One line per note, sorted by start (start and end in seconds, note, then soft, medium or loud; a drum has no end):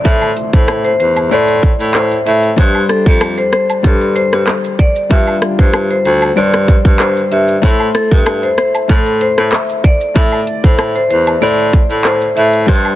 0.00 0.04 A3 medium
0.00 0.82 A3 medium
0.00 0.05 E4 medium
0.00 0.07 C5 medium
0.00 downlifter medium
0.05 0.32 A2 loud
0.05 0.83 E4 medium
0.05 0.84 C5 medium
0.05 0.33 E5 loud
0.05 kick loud
0.05 shaker medium
0.22 high woodblock medium
0.22 shaker medium
0.36 closed hi-hat medium
0.36 cabasa medium
0.36 shaker medium
0.53 0.92 A2 medium
0.53 0.67 C5 medium
0.53 kick loud
0.53 shaker medium
0.68 cross-stick loud
0.68 high woodblock medium
0.68 shaker medium
0.85 0.98 C5 medium
0.85 shaker medium
1.00 1.26 E2 medium
1.00 1.15 C5 medium
1.00 closed hi-hat medium
1.00 cabasa medium
1.00 shaker soft
1.16 high woodblock medium
1.16 shaker medium
1.30 1.72 A2 loud
1.30 2.09 A3 medium
1.30 2.09 E4 medium
1.30 2.10 C5 medium
1.30 1.77 D5 loud
1.30 shaker medium
1.48 shaker medium
1.63 kick loud
1.63 closed hi-hat medium
1.63 cabasa medium
1.63 shaker medium
1.80 2.19 A2 medium
1.80 shaker medium
1.95 2.10 C5 medium
1.95 cross-stick medium
1.95 clap medium
1.95 shaker medium
2.12 shaker medium
2.26 2.53 A2 medium
2.26 2.41 E5 medium
2.26 closed hi-hat medium
2.26 cabasa medium
2.26 shaker medium
2.43 shaker medium
2.56 2.84 G2 loud
2.56 3.35 G3 medium
2.56 3.36 D4 medium
2.56 3.36 C5 loud
2.56 kick loud
2.56 shaker medium
2.75 high woodblock medium
2.75 shaker medium
2.89 3.05 A4 medium
2.89 cross-stick medium
2.89 closed hi-hat medium
2.89 cabasa medium
2.89 shaker medium
3.06 3.45 F2 medium
3.06 kick medium
3.06 shaker medium
3.21 cross-stick loud
3.21 high woodblock medium
3.21 shaker medium
3.38 3.51 C5 medium
3.38 shaker medium
3.53 3.68 C5 medium
3.53 cross-stick medium
3.53 closed hi-hat medium
3.53 cabasa medium
3.53 shaker soft
3.69 high woodblock medium
3.69 shaker medium
3.83 4.25 G2 medium
3.83 4.61 G3 medium
3.83 4.62 D4 medium
3.83 3.99 A4 medium
3.83 4.63 C5 medium
3.83 kick loud
3.83 shaker medium
4.01 shaker medium
4.16 4.31 C5 medium
4.16 closed hi-hat medium
4.16 cabasa medium
4.16 shaker medium
4.32 4.45 G2 medium
4.32 cross-stick medium
4.32 shaker medium
4.47 cross-stick loud
4.47 clap medium
4.47 shaker medium
4.64 shaker medium
4.79 4.94 D5 medium
4.79 kick medium
4.79 closed hi-hat medium
4.79 cabasa medium
4.79 shaker medium
4.96 shaker medium
5.09 5.37 G2 loud
5.09 5.88 G3 medium
5.09 5.89 D4 medium
5.09 5.89 F4 medium
5.09 5.39 E5 loud
5.09 kick loud
5.09 shaker medium
5.27 high woodblock medium
5.27 shaker medium
5.42 cross-stick loud
5.42 closed hi-hat medium
5.42 cabasa medium
5.42 shaker medium
5.59 5.98 G2 medium
5.59 5.72 C5 medium
5.59 kick medium
5.59 shaker medium
5.73 cross-stick medium
5.73 high woodblock medium
5.73 shaker medium
5.90 6.04 C5 medium
5.90 shaker medium
6.05 6.32 D2 loud
6.05 6.20 C5 medium
6.05 closed hi-hat medium
6.05 cabasa medium
6.05 shaker soft
6.22 high woodblock medium
6.22 shaker medium
6.36 6.77 G2 loud
6.36 7.14 G3 medium
6.36 7.15 D4 medium
6.36 7.15 C5 medium
6.36 6.82 D5 loud
6.36 shaker medium
6.53 cross-stick loud
6.53 shaker medium
6.68 kick loud
6.68 closed hi-hat medium
6.68 cabasa medium
6.68 shaker medium
6.85 7.24 G2 medium
6.85 kick loud
6.85 shaker medium
7.00 7.15 C5 medium
7.00 cross-stick medium
7.00 clap medium
7.00 shaker medium
7.17 shaker medium
7.31 7.58 G2 medium
7.31 7.47 E5 medium
7.31 closed hi-hat medium
7.31 cabasa medium
7.31 shaker medium
7.48 shaker medium
7.62 7.90 A2 loud
7.62 8.40 A3 loud
7.62 8.41 E4 medium
7.62 8.42 C5 loud
7.62 kick loud
7.62 shaker medium
7.80 high woodblock medium
7.80 shaker medium
7.94 8.10 A4 medium
7.94 cross-stick loud
7.94 closed hi-hat medium
7.94 cabasa medium
7.94 shaker medium
8.12 8.50 G2 medium
8.12 kick medium
8.12 shaker medium
8.26 cross-stick loud
8.26 high woodblock medium
8.26 shaker medium
8.43 8.56 C5 medium
8.43 shaker medium
8.58 8.73 C5 medium
8.58 cross-stick medium
8.58 closed hi-hat medium
8.58 cabasa medium
8.58 shaker soft
8.75 high woodblock medium
8.75 shaker medium
8.88 9.30 A2 medium
8.88 9.67 A3 medium
8.88 9.67 E4 medium
8.88 9.05 A4 medium
8.88 9.68 C5 medium
8.88 kick medium
8.88 shaker medium
9.06 shaker medium
9.21 9.36 C5 medium
9.21 closed hi-hat medium
9.21 cabasa medium
9.21 shaker medium
9.38 9.50 A2 medium
9.38 cross-stick medium
9.38 shaker medium
9.52 cross-stick medium
9.52 clap medium
9.52 shaker medium
9.69 shaker medium
9.84 9.99 D5 medium
9.84 kick medium
9.84 closed hi-hat medium
9.84 cabasa medium
9.84 shaker medium
10.01 shaker medium
10.14 10.42 A2 loud
10.14 10.93 A3 medium
10.14 10.94 E4 medium
10.14 10.94 D5 medium
10.14 10.44 E5 loud
10.14 kick loud
10.14 shaker medium
10.32 high woodblock medium
10.32 shaker soft
10.47 closed hi-hat medium
10.47 cabasa medium
10.47 shaker medium
10.64 11.03 A2 medium
10.64 10.77 C5 medium
10.64 kick medium
10.64 shaker medium
10.79 cross-stick medium
10.79 high woodblock medium
10.79 shaker medium
10.95 11.09 C5 medium
10.95 shaker medium
11.10 11.37 E2 medium
11.10 11.26 C5 medium
11.10 closed hi-hat medium
11.10 cabasa medium
11.10 shaker soft
11.27 high woodblock medium
11.27 shaker medium
11.41 11.82 A2 loud
11.41 12.19 A3 medium
11.41 12.20 E4 medium
11.41 12.21 C5 medium
11.41 11.87 D5 loud
11.41 shaker medium
11.59 shaker medium
11.73 kick loud
11.73 closed hi-hat medium
11.73 cabasa medium
11.73 shaker medium
11.90 12.29 A2 medium
11.90 shaker medium
12.05 12.20 C5 medium
12.05 cross-stick medium
12.05 clap medium
12.05 shaker medium
12.22 shaker medium
12.36 12.63 A2 loud
12.36 12.52 E5 medium
12.36 closed hi-hat medium
12.36 cabasa medium
12.36 shaker medium
12.53 shaker medium
12.66 12.95 G2 loud
12.66 12.96 G3 medium
12.66 12.96 D4 medium
12.66 12.96 C5 loud
12.66 kick loud
12.66 shaker medium
12.85 high woodblock medium
12.85 shaker soft